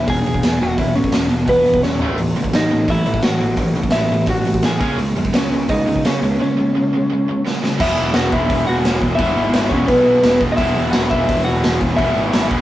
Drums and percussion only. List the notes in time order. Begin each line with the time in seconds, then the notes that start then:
0.08 kick, open hi-hat
0.26 open hi-hat
0.34 kick
0.43 snare, open hi-hat
0.61 open hi-hat
0.78 kick, open hi-hat
0.95 open hi-hat
1.04 kick
1.12 snare, open hi-hat
1.29 open hi-hat
1.47 kick, open hi-hat
1.64 open hi-hat
1.74 kick
1.83 snare
1.99 floor tom
2.18 open hi-hat
2.36 open hi-hat
2.44 kick
2.53 snare, open hi-hat
2.72 open hi-hat
2.88 kick, open hi-hat
3.06 open hi-hat
3.14 kick
3.22 snare, open hi-hat
3.40 open hi-hat
3.57 kick, open hi-hat
3.75 open hi-hat
3.84 kick
3.90 snare, open hi-hat
4.08 open hi-hat
4.26 kick, open hi-hat
4.45 open hi-hat
4.54 kick
4.63 snare, open hi-hat
4.81 kick, open hi-hat
4.99 open hi-hat
5.16 open hi-hat
5.25 kick
5.33 snare, open hi-hat
5.52 open hi-hat
5.69 kick, open hi-hat
5.87 open hi-hat
5.96 kick
6.05 snare, open hi-hat
6.22 open hi-hat
7.46 snare
7.64 snare
7.80 kick, crash
8.13 snare, open hi-hat
8.32 kick
8.50 kick, open hi-hat
8.85 snare, open hi-hat
9.02 kick
9.19 kick, open hi-hat
9.53 snare, open hi-hat
9.71 kick
9.88 kick, open hi-hat
10.23 snare, open hi-hat
10.41 kick
10.57 kick, open hi-hat
10.93 snare, open hi-hat
11.11 kick
11.29 kick, open hi-hat
11.64 snare, open hi-hat
11.81 kick
11.99 kick, open hi-hat
12.33 snare, open hi-hat
12.51 kick